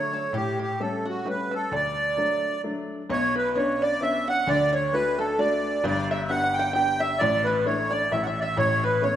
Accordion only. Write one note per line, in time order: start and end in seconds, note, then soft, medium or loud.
0.00 0.36 C#5 medium
0.36 0.59 G4 medium
0.62 0.82 G4 medium
0.81 1.07 A4 medium
1.08 1.28 F#4 medium
1.29 1.54 B4 medium
1.55 1.74 A4 medium
1.75 2.62 D5 loud
3.12 3.35 C#5 loud
3.38 3.58 B4 medium
3.57 3.83 C#5 medium
3.82 4.03 D5 loud
4.02 4.28 E5 loud
4.29 4.49 F#5 loud
4.49 4.74 D5 loud
4.75 4.95 C#5 medium
4.93 5.19 B4 loud
5.19 5.40 A4 medium
5.39 5.85 D5 loud
5.87 6.09 D5 loud
6.11 6.31 E5 medium
6.30 6.56 F#5 loud
6.53 6.72 G5 loud
6.74 7.01 G5 loud
6.99 7.21 E5 loud
7.19 7.46 D5 loud
7.44 7.66 B4 medium
7.66 7.92 C#5 medium
7.91 8.12 D5 loud
8.12 8.25 E5 medium
8.22 8.40 E5 medium
8.22 8.26 F#5 medium
8.40 8.42 D5 medium
8.40 8.58 E5 loud
8.58 8.84 C#5 loud
8.84 9.04 B4 medium
9.02 9.16 C#5 medium